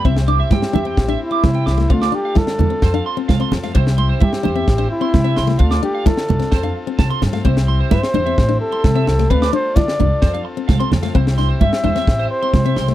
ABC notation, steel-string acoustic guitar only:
X:1
M:4/4
L:1/16
Q:1/4=130
K:C
V:1 name="Steel-string acoustic guitar"
C2 D2 E2 D C2 D2 E2 C2 A, | C2 D2 E2 D C2 D2 C2 C2 A, | z4 E2 D C2 D2 C2 C2 A, | C2 D2 E2 D C2 D2 C2 C2 A, |
C2 z2 E2 D C2 D2 C2 C2 A, | C2 D2 E2 D z2 D2 C2 C2 A, | C2 D2 E2 D C2 z2 C2 C2 A, |]